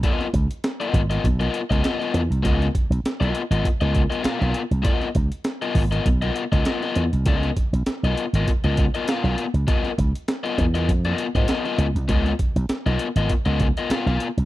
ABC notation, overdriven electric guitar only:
X:1
M:4/4
L:1/16
Q:"Swing 16ths" 1/4=100
K:Dbmix
V:1 name="Overdriven electric guitar"
[CFBe] z4 [CFBe] z [CFBe] z [CFBe] z [CFBe] [CFBe] [CFBe] z2 | [CFBe] z4 [CFBe] z [CFBe] z [CFBe] z [CFBe] [CFBf] [CFBf] z2 | [CFBe] z4 [CFBe] z [CFBe] z [CFBe] z [CFBe] [CFBe] [CFBe] z2 | [CFBe] z4 [CFBe] z [CFBe] z [CFBe] z [CFBe] [CFBf] [CFBf] z2 |
[CFBe] z4 [CFBe] z [CFBe] z [CFBe] z [CFBe] [CFBe] [CFBe] z2 | [CFBe] z4 [CFBe] z [CFBe] z [CFBe] z [CFBe] [CFBf] [CFBf] z2 |]